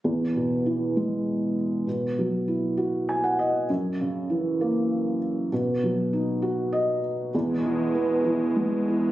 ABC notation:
X:1
M:6/8
L:1/16
Q:3/8=66
K:E
V:1 name="Felt piano"
z12 | z8 g f d2 | z12 | z8 d4 |
z12 |]
V:2 name="Felt piano" clef=bass
E,,2 B,,2 E,2 G,6 | B,,2 F,2 E2 F6 | F,,2 C,2 E,2 ^A,6 | B,,2 F,2 D2 F6 |
E,,2 E,2 B,2 E,2 G,2 E,2 |]
V:3 name="Pipe organ" clef=bass
z12 | z12 | z12 | z12 |
[E,,B,,G,]12 |]